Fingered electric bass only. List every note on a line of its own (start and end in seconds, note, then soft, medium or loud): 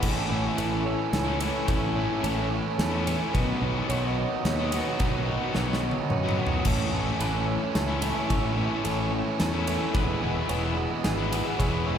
0.03 0.21 A1 medium
0.30 0.49 A1 medium
0.58 0.94 A1 loud
1.13 1.49 C#2 medium
1.69 2.05 A1 medium
2.24 2.60 A1 loud
2.79 3.15 E2 loud
3.35 3.53 B1 loud
3.62 3.80 B1 loud
3.89 4.25 B1 loud
4.45 4.81 D#2 loud
5.00 5.36 B1 medium
5.56 5.91 B1 loud
6.10 6.46 F#2 medium
6.65 6.83 A1 medium
6.93 7.11 A1 medium
7.20 7.56 A1 loud
7.75 8.11 C#2 loud
8.31 8.66 A1 loud
8.86 9.21 A1 loud
9.41 9.76 E2 loud
9.95 10.13 E1 loud
10.22 10.40 E1 loud
10.50 10.86 E1 loud
11.05 11.40 G#1 loud
11.60 11.95 E1 loud